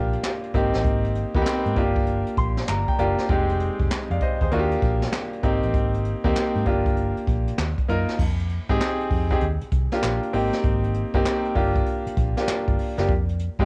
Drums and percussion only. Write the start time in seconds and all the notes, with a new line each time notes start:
0.13 closed hi-hat
0.23 snare, clap
0.43 closed hi-hat
0.54 kick, closed hi-hat
0.74 snare, closed hi-hat
0.84 kick, closed hi-hat
1.04 closed hi-hat
1.15 closed hi-hat
1.35 kick, closed hi-hat
1.46 snare, clap
1.66 closed hi-hat
1.76 kick, closed hi-hat
1.96 kick, closed hi-hat
2.07 closed hi-hat
2.27 closed hi-hat
2.37 kick, closed hi-hat
2.57 snare, closed hi-hat
2.68 snare, clap
2.88 kick, closed hi-hat
2.99 closed hi-hat
3.18 snare, closed hi-hat
3.29 kick, closed hi-hat
3.49 closed hi-hat
3.60 closed hi-hat
3.79 kick, closed hi-hat
3.91 snare, clap
4.10 closed hi-hat
4.21 kick, closed hi-hat
4.41 kick, closed hi-hat
4.51 closed hi-hat
4.71 closed hi-hat
4.82 kick, closed hi-hat
5.02 snare, closed hi-hat
5.12 snare, clap
5.33 closed hi-hat
5.43 kick, closed hi-hat
5.63 closed hi-hat
5.74 kick, closed hi-hat
5.94 closed hi-hat
6.05 closed hi-hat
6.24 kick, closed hi-hat
6.36 snare, clap
6.55 closed hi-hat
6.66 kick, closed hi-hat
6.86 kick, closed hi-hat
6.96 closed hi-hat
7.17 closed hi-hat
7.27 kick, closed hi-hat
7.48 closed hi-hat
7.58 snare, clap
7.78 kick, closed hi-hat
7.89 closed hi-hat
8.09 snare, closed hi-hat
8.19 kick, crash
8.39 closed hi-hat
8.50 closed hi-hat
8.69 kick, closed hi-hat
8.81 snare, clap
9.00 closed hi-hat
9.10 kick, open hi-hat
9.31 kick, closed hi-hat
9.41 closed hi-hat
9.61 closed hi-hat
9.72 kick, closed hi-hat
9.92 snare, closed hi-hat
10.02 snare, clap
10.23 closed hi-hat
10.33 open hi-hat
10.53 snare, closed hi-hat
10.64 kick, closed hi-hat
10.84 closed hi-hat
10.94 closed hi-hat
11.14 kick, closed hi-hat
11.25 snare, clap
11.45 closed hi-hat
11.55 kick, open hi-hat
11.76 kick, closed hi-hat
11.86 closed hi-hat
12.06 closed hi-hat
12.17 kick, closed hi-hat
12.37 snare, closed hi-hat
12.47 snare, clap
12.68 kick, closed hi-hat
12.79 open hi-hat
12.98 snare, closed hi-hat
13.09 kick, closed hi-hat
13.29 closed hi-hat
13.39 closed hi-hat
13.59 kick, closed hi-hat